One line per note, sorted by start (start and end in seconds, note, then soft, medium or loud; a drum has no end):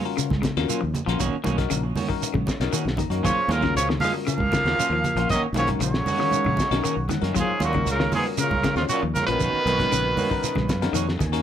0.05 0.28 C#4 medium
0.05 0.29 F4 medium
0.05 0.29 F#4 medium
0.05 0.29 A#4 loud
0.05 muted clean electric guitar stroke soft
0.17 0.37 C#3 medium
0.17 muted clean electric guitar stroke soft
0.17 closed hi-hat medium
0.17 shekere medium
0.30 0.41 C#2 medium
0.30 kick medium
0.30 snare soft
0.30 high conga medium
0.42 0.62 C#3 medium
0.42 muted clean electric guitar stroke soft
0.42 kick medium
0.42 snare medium
0.42 closed hi-hat medium
0.42 high conga medium
0.42 shekere soft
0.57 0.67 D#2 medium
0.57 0.80 C#4 loud
0.57 0.80 F4 medium
0.57 0.80 F#4 medium
0.57 0.80 A#4 loud
0.57 snare medium
0.68 0.81 F#3 medium
0.68 0.80 A#3 medium
0.68 0.80 C#4 medium
0.68 0.80 F4 medium
0.68 muted fingered electric bass stroke soft
0.68 closed hi-hat medium
0.68 shekere medium
0.81 0.93 D#2 medium
0.81 1.01 F3 medium
0.81 muted clean electric guitar stroke soft
0.94 muted clean electric guitar stroke soft
0.94 closed hi-hat medium
0.94 low conga medium
0.94 shekere soft
1.06 1.18 A#1 loud
1.06 1.26 F3 medium
1.06 1.18 A#3 soft
1.06 1.19 C#4 medium
1.06 1.21 C#4 loud
1.06 1.20 F4 medium
1.06 1.21 F4 medium
1.06 1.21 F#4 medium
1.06 1.21 A#4 loud
1.06 snare soft
1.06 closed hi-hat medium
1.19 1.30 B1 medium
1.19 1.35 D#3 medium
1.19 1.35 A#3 medium
1.19 1.35 C#4 medium
1.19 1.35 F#4 medium
1.19 kick medium
1.19 closed hi-hat medium
1.19 shekere medium
1.44 1.67 B1 medium
1.44 1.64 D#3 medium
1.44 1.58 D#3 medium
1.44 1.57 A#3 medium
1.44 1.57 C#4 medium
1.44 1.57 F#4 medium
1.44 closed hi-hat medium
1.44 high conga medium
1.44 shekere soft
1.58 1.82 C#4 medium
1.58 1.82 D#4 medium
1.58 1.82 F#4 medium
1.58 1.82 A#4 loud
1.58 muted clean electric guitar stroke soft
1.58 kick medium
1.58 snare soft
1.58 closed hi-hat medium
1.70 1.92 A#1 medium
1.70 1.90 C#3 medium
1.70 muted clean electric guitar stroke soft
1.70 closed hi-hat medium
1.70 shekere medium
1.83 muted clean electric guitar stroke soft
1.96 2.09 D#3 medium
1.96 2.08 A#3 medium
1.96 2.08 C#4 medium
1.96 2.08 F#4 medium
1.96 open hi-hat medium
1.96 high conga medium
1.96 low conga medium
1.96 shekere soft
2.08 2.28 D#3 medium
2.08 2.33 C#4 medium
2.08 2.33 D#4 medium
2.08 2.33 F#4 medium
2.08 2.33 A#4 loud
2.08 muted clean electric guitar stroke soft
2.08 kick medium
2.22 muted clean electric guitar stroke soft
2.22 closed hi-hat medium
2.22 shekere medium
2.34 2.45 A#1 medium
2.34 2.54 C#3 medium
2.34 kick medium
2.34 high conga medium
2.46 2.59 C#5 medium
2.46 muted clean electric guitar stroke soft
2.46 kick medium
2.46 snare medium
2.46 closed hi-hat medium
2.46 high conga medium
2.46 shekere soft
2.60 2.70 B1 medium
2.60 2.84 C#4 medium
2.60 2.84 D#4 medium
2.60 2.84 F#4 medium
2.60 2.84 A#4 loud
2.60 2.72 D#5 medium
2.60 snare medium
2.60 closed hi-hat medium
2.73 2.92 D#3 medium
2.73 2.86 D#3 medium
2.73 2.85 A#3 medium
2.73 2.85 C#4 medium
2.73 2.84 F#4 medium
2.73 closed hi-hat medium
2.73 shekere medium
2.85 2.96 B1 medium
2.85 muted clean electric guitar stroke soft
2.85 snare medium
2.97 3.18 D#3 medium
2.97 3.22 A#5 medium
2.97 muted clean electric guitar stroke soft
2.97 kick medium
2.97 closed hi-hat medium
2.97 low conga medium
2.97 shekere soft
3.10 3.21 F#2 medium
3.10 3.22 A#3 soft
3.10 3.24 C#4 medium
3.10 3.24 D#4 medium
3.10 3.23 F#4 medium
3.10 3.24 F#4 medium
3.10 3.24 A#4 medium
3.10 closed hi-hat medium
3.22 3.35 D#2 loud
3.22 3.52 C#3 medium
3.22 3.52 F3 medium
3.22 3.39 F#3 medium
3.22 3.44 F#3 medium
3.22 3.39 A#3 medium
3.22 3.39 C#4 medium
3.22 3.39 F4 medium
3.22 3.53 C#5 medium
3.22 kick medium
3.22 closed hi-hat medium
3.22 shekere medium
3.36 muted fingered electric bass stroke soft
3.48 3.70 D#2 loud
3.48 3.76 A#2 medium
3.48 3.76 C#3 medium
3.48 3.62 F#3 medium
3.48 3.62 A#3 medium
3.48 3.62 C#4 medium
3.48 3.62 F4 medium
3.48 3.76 A#4 medium
3.48 snare soft
3.48 closed hi-hat medium
3.48 high conga medium
3.48 shekere soft
3.61 3.83 C#3 medium
3.61 3.86 C#4 medium
3.61 3.86 F4 medium
3.61 3.86 F#4 medium
3.61 3.86 A#4 medium
3.61 muted clean electric guitar stroke soft
3.61 kick medium
3.61 snare soft
3.61 high conga medium
3.75 3.96 C#2 medium
3.75 3.88 C#3 medium
3.75 3.88 F3 medium
3.75 3.88 C#5 medium
3.75 muted clean electric guitar stroke soft
3.75 snare soft
3.75 closed hi-hat medium
3.75 shekere medium
3.89 4.08 D#3 medium
3.89 muted clean electric guitar stroke soft
3.89 snare medium
4.00 4.12 F3 medium
4.00 4.14 F#3 medium
4.00 4.14 A#3 medium
4.00 4.14 C#4 medium
4.00 4.13 F4 medium
4.00 4.12 F5 loud
4.00 open hi-hat medium
4.00 high conga medium
4.00 low conga medium
4.00 shekere soft
4.04 4.15 G#3 medium
4.14 4.38 C#4 medium
4.14 4.38 F4 medium
4.14 4.38 F#4 medium
4.14 4.38 A#4 medium
4.14 muted clean electric guitar stroke soft
4.27 4.46 C#3 medium
4.27 5.26 F3 medium
4.27 5.27 A#3 loud
4.27 5.26 F5 loud
4.27 muted clean electric guitar stroke soft
4.27 closed hi-hat medium
4.27 shekere medium
4.38 4.51 C#2 medium
4.38 kick medium
4.38 high conga medium
4.52 4.72 C#3 medium
4.52 muted clean electric guitar stroke soft
4.52 kick medium
4.52 snare medium
4.52 closed hi-hat medium
4.52 high conga medium
4.52 shekere soft
4.64 4.75 D#2 medium
4.64 4.89 C#4 medium
4.64 4.90 F4 medium
4.64 4.89 F#4 medium
4.64 4.89 A#4 medium
4.64 snare medium
4.78 4.91 F#3 soft
4.78 4.91 A#3 medium
4.78 4.91 C#4 medium
4.78 4.92 F4 medium
4.78 muted fingered electric bass stroke soft
4.78 closed hi-hat medium
4.78 shekere medium
4.90 5.01 D#2 medium
4.90 5.12 F3 medium
4.90 muted clean electric guitar stroke soft
5.04 muted clean electric guitar stroke soft
5.04 closed hi-hat medium
5.04 low conga medium
5.04 shekere soft
5.16 5.27 A#1 medium
5.16 5.37 F3 medium
5.16 5.30 A#3 soft
5.16 5.30 C#4 medium
5.16 5.30 C#4 soft
5.16 5.30 F4 medium
5.16 5.30 F#4 medium
5.16 5.30 A#4 medium
5.16 closed hi-hat medium
5.29 5.41 B1 loud
5.29 5.45 D#3 medium
5.29 5.43 D#3 medium
5.29 5.44 F#3 medium
5.29 5.46 A#3 medium
5.29 5.46 C#4 medium
5.29 5.46 F#4 medium
5.29 5.42 D#5 loud
5.29 kick medium
5.29 closed hi-hat medium
5.29 shekere medium
5.53 5.75 B1 loud
5.53 5.69 D#3 medium
5.53 5.76 D#3 medium
5.53 5.68 A#3 medium
5.53 5.68 C#4 medium
5.53 5.68 F#4 medium
5.53 closed hi-hat medium
5.53 high conga loud
5.57 5.69 C#3 medium
5.57 5.68 F3 medium
5.57 5.69 C#5 medium
5.57 shekere soft
5.67 5.92 C#4 medium
5.67 5.92 D#4 medium
5.67 5.91 F#4 medium
5.67 5.92 A#4 medium
5.67 kick medium
5.67 closed hi-hat soft
5.67 high conga medium
5.79 6.01 A#1 medium
5.79 6.01 C#3 medium
5.79 7.07 C#5 medium
5.79 muted clean electric guitar stroke soft
5.79 closed hi-hat medium
5.79 shekere medium
5.84 7.09 C#3 medium
5.84 7.07 F#3 medium
5.94 muted clean electric guitar stroke soft
5.94 snare medium
6.06 6.20 D#3 medium
6.06 6.19 A#3 medium
6.06 6.19 C#4 medium
6.06 6.18 F#4 medium
6.06 open hi-hat medium
6.06 high conga medium
6.06 low conga medium
6.06 shekere soft
6.18 6.40 D#3 medium
6.18 6.43 C#4 medium
6.18 6.43 D#4 medium
6.18 6.43 F#4 medium
6.18 6.43 A#4 medium
6.18 muted clean electric guitar stroke soft
6.18 snare soft
6.31 muted clean electric guitar stroke soft
6.31 closed hi-hat medium
6.31 high conga medium
6.31 shekere medium
6.45 6.56 A#1 medium
6.45 6.66 C#3 medium
6.45 kick medium
6.45 high conga medium
6.56 6.81 D#5 medium
6.56 muted clean electric guitar stroke soft
6.56 kick medium
6.56 snare medium
6.56 closed hi-hat medium
6.56 high conga medium
6.56 shekere soft
6.71 6.81 B1 medium
6.71 6.95 C#4 loud
6.71 6.95 D#4 medium
6.71 6.95 F#4 medium
6.71 6.95 A#4 loud
6.71 snare medium
6.71 closed hi-hat medium
6.83 6.97 D#3 medium
6.83 7.04 D#3 medium
6.83 6.96 A#3 medium
6.83 6.96 C#4 medium
6.83 6.95 F#4 medium
6.83 7.08 F#5 medium
6.83 closed hi-hat medium
6.83 shekere medium
6.96 7.07 B1 medium
6.96 muted clean electric guitar stroke soft
7.09 7.29 D#3 medium
7.09 7.33 F#5 medium
7.09 muted clean electric guitar stroke soft
7.09 snare soft
7.09 closed hi-hat medium
7.09 high conga medium
7.09 low conga medium
7.09 shekere soft
7.21 7.33 F#2 loud
7.21 7.34 A#3 soft
7.21 7.35 C#4 medium
7.21 7.34 C#4 soft
7.21 7.35 D#4 medium
7.21 7.35 F#4 medium
7.21 7.36 F#4 soft
7.21 7.35 A#4 medium
7.21 snare soft
7.21 closed hi-hat medium
7.34 7.47 D#2 loud
7.34 7.55 F#3 medium
7.34 7.51 F#3 medium
7.34 7.51 A#3 medium
7.34 7.51 F4 medium
7.34 muted clean electric guitar stroke medium
7.34 kick medium
7.34 closed hi-hat medium
7.34 shekere medium
7.38 7.61 G#2 medium
7.38 7.63 C#3 medium
7.38 7.62 G#4 medium
7.48 muted fingered electric bass stroke soft
7.60 7.82 D#2 loud
7.60 7.86 F#2 medium
7.60 7.74 F#3 medium
7.60 7.73 A#3 medium
7.60 7.73 C#4 medium
7.60 7.73 F4 medium
7.60 closed hi-hat medium
7.60 high conga loud
7.60 shekere soft
7.65 7.89 A#2 medium
7.65 7.87 F#4 medium
7.73 7.94 C#3 medium
7.73 7.98 C#4 medium
7.73 7.98 F4 medium
7.73 7.98 F#4 medium
7.73 7.98 A#4 medium
7.73 muted clean electric guitar stroke soft
7.73 kick medium
7.73 high conga medium
7.86 8.07 C#2 medium
7.86 8.13 A#2 medium
7.86 muted clean electric guitar stroke soft
7.86 closed hi-hat medium
7.86 shekere medium
7.91 8.13 C#3 medium
7.91 8.13 A#4 medium
8.00 8.20 D#3 medium
8.00 muted clean electric guitar stroke soft
8.00 snare medium
8.11 8.26 G#2 medium
8.11 8.25 F#3 medium
8.11 8.24 A#3 medium
8.11 8.24 C#4 medium
8.11 8.24 F4 medium
8.11 8.26 G#4 medium
8.11 open hi-hat medium
8.11 high conga medium
8.11 low conga medium
8.11 shekere soft
8.17 8.28 B2 medium
8.25 8.50 C#4 medium
8.25 8.50 F4 medium
8.25 8.50 F#4 medium
8.25 8.50 A#4 medium
8.25 muted clean electric guitar stroke soft
8.38 8.76 A#2 medium
8.38 8.58 C#3 medium
8.38 8.75 A#4 medium
8.38 muted clean electric guitar stroke soft
8.38 closed hi-hat medium
8.38 shekere medium
8.43 8.77 C#3 medium
8.51 8.62 C#2 medium
8.51 kick medium
8.51 high conga medium
8.63 8.84 C#3 medium
8.63 muted clean electric guitar stroke soft
8.63 kick medium
8.63 snare medium
8.63 closed hi-hat soft
8.63 high conga medium
8.63 shekere soft
8.76 8.87 D#2 medium
8.76 8.83 F2 medium
8.76 9.00 C#4 medium
8.76 9.01 F4 medium
8.76 8.83 F4 medium
8.76 9.00 F#4 medium
8.76 9.01 C#5 medium
8.76 snare medium
8.80 8.85 G#2 medium
8.89 9.02 F#2 medium
8.89 9.04 A#2 medium
8.89 9.03 F#3 medium
8.89 9.03 C#4 medium
8.89 9.02 F4 medium
8.89 9.01 F#4 medium
8.89 muted clean electric guitar stroke medium
8.89 closed hi-hat medium
8.89 shekere medium
9.03 9.13 D#2 medium
9.03 9.22 F3 medium
9.03 muted clean electric guitar stroke soft
9.14 9.25 A#2 medium
9.14 9.26 A#4 loud
9.14 muted clean electric guitar stroke soft
9.14 closed hi-hat medium
9.14 high conga medium
9.14 low conga medium
9.14 shekere soft
9.20 9.30 C#3 medium
9.26 9.39 A#1 medium
9.26 10.90 B2 medium
9.26 9.48 F3 medium
9.26 9.41 C#4 medium
9.26 9.42 C#4 soft
9.26 9.41 F4 medium
9.26 9.41 F#4 medium
9.26 9.41 A#4 medium
9.26 10.90 B4 loud
9.26 closed hi-hat medium
9.30 10.93 D#3 medium
9.30 9.41 A#3 soft
9.40 9.52 B1 medium
9.40 9.57 D#3 medium
9.40 9.57 A#3 medium
9.40 9.58 C#4 medium
9.40 9.58 F#4 medium
9.40 kick medium
9.40 snare soft
9.40 closed hi-hat medium
9.40 shekere medium
9.54 muted fingered electric bass stroke soft
9.66 9.87 B1 loud
9.66 9.87 D#3 medium
9.66 9.80 D#3 medium
9.66 9.80 A#3 medium
9.66 9.79 F#4 medium
9.66 snare soft
9.66 closed hi-hat medium
9.66 high conga loud
9.66 shekere soft
9.79 10.03 C#4 medium
9.79 10.03 D#4 medium
9.79 10.03 F#4 medium
9.79 10.03 A#4 medium
9.79 muted clean electric guitar stroke soft
9.79 kick medium
9.79 snare soft
9.79 closed hi-hat soft
9.79 high conga medium
9.92 10.13 A#1 medium
9.92 10.12 C#3 medium
9.92 muted clean electric guitar stroke soft
9.92 closed hi-hat medium
9.92 shekere medium
10.05 muted clean electric guitar stroke medium
10.17 10.31 D#3 medium
10.17 10.30 A#3 medium
10.17 10.30 C#4 medium
10.17 10.30 F#4 medium
10.17 10.42 C#5 medium
10.17 open hi-hat medium
10.17 high conga medium
10.17 low conga medium
10.17 shekere soft
10.30 10.50 D#3 medium
10.30 10.55 C#4 medium
10.30 10.55 D#4 medium
10.30 10.55 F#4 medium
10.30 10.55 A#4 loud
10.30 muted clean electric guitar stroke soft
10.30 kick medium
10.43 10.68 D#5 medium
10.43 muted clean electric guitar stroke soft
10.43 snare soft
10.43 closed hi-hat medium
10.43 shekere medium
10.55 10.67 A#1 medium
10.55 10.76 C#3 medium
10.55 kick medium
10.55 snare soft
10.55 high conga medium
10.68 10.92 F#2 medium
10.68 10.93 F5 medium
10.68 muted clean electric guitar stroke soft
10.68 kick medium
10.68 snare medium
10.68 closed hi-hat medium
10.68 high conga medium
10.68 shekere soft
10.82 11.06 C#4 loud
10.82 11.06 D#4 medium
10.82 11.06 F#4 medium
10.82 11.06 A#4 loud
10.82 snare medium
10.82 closed hi-hat medium
10.93 11.17 F2 medium
10.93 11.14 D#3 medium
10.93 11.08 D#3 medium
10.93 11.07 A#3 medium
10.93 11.07 C#4 medium
10.93 11.06 F#4 medium
10.93 11.19 F#5 medium
10.93 closed hi-hat medium
10.93 shekere medium
11.08 muted clean electric guitar stroke soft
11.08 snare medium
11.20 11.42 D#2 medium
11.20 11.42 G#5 medium
11.20 muted clean electric guitar stroke soft
11.20 kick medium
11.20 snare soft
11.20 closed hi-hat medium
11.20 low conga medium
11.20 shekere soft
11.32 11.42 A#3 soft
11.32 11.42 C#4 medium
11.32 11.42 D#4 medium
11.32 11.42 F#4 medium
11.32 11.42 A#4 loud
11.32 closed hi-hat medium